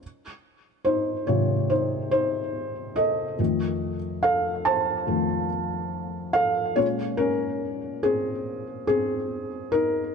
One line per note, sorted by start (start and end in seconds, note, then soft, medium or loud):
0.85 1.26 D#4 medium
0.85 1.29 C5 medium
1.27 3.35 G#2 medium
1.27 3.36 C3 medium
1.27 3.35 D#3 soft
1.27 1.68 F4 medium
1.27 1.71 C#5 medium
1.70 2.10 D#4 medium
1.70 2.10 C5 medium
2.11 2.93 D#4 medium
2.11 2.99 C5 loud
2.96 4.20 A4 medium
2.96 4.19 D#5 medium
3.39 3.95 F2 soft
3.39 3.96 D#3 soft
3.39 3.96 A3 medium
4.23 4.63 A4 medium
4.23 4.63 F5 medium
4.65 6.31 C5 medium
4.65 6.31 A5 medium
5.07 5.46 F2 soft
5.07 5.46 D#3 soft
5.07 5.46 A3 soft
6.33 6.74 A4 medium
6.33 6.78 F5 loud
6.76 10.11 A#2 soft
6.76 10.11 G#3 soft
6.76 7.18 C#4 soft
6.76 6.87 F4 medium
6.76 6.85 C#5 loud
7.17 8.00 C#4 medium
7.17 7.99 A#4 loud
8.03 8.85 C4 medium
8.03 8.86 G#4 medium
8.87 9.70 C4 medium
8.87 9.75 G#4 loud
9.72 10.15 D#4 medium
9.72 10.15 A#4 medium